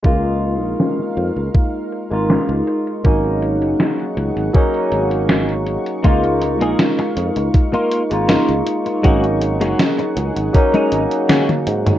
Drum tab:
HH |--xxxxxxxxxxxxxx|xxxxxxxxxxxxxxxx|xxxxxxxxxxxxxxxx|xxxxxxxxxxxxxxxx|
SD |----oo------o---|----o-------o---|----oo------o---|---oo-------o---|
T1 |----------------|----------------|----------------|------------oo--|
T2 |----------------|----------------|----------------|---------------o|
BD |o-------o-------|o-------o-------|o-------o-------|o-------o-------|